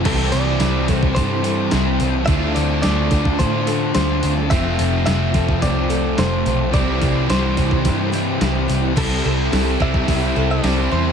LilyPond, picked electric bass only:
\new Staff \with { instrumentName = "Picked electric bass" } { \clef bass \time 4/4 \key c \major \tempo 4 = 108 c,8 c,8 c,8 c,8 g,4 c,8 c,8 | d,8 d,8 d,8 d,8 a,4 d,8 d,8 | f,,8 f,,8 f,,8 f,,8 c,4 f,,8 b,,8 | c,8 c,8 c,8 c,8 g,4 c,8 c,8 |
c,8 c,8 c,8 c,8 c,8 c,8 c,8 e,8 | }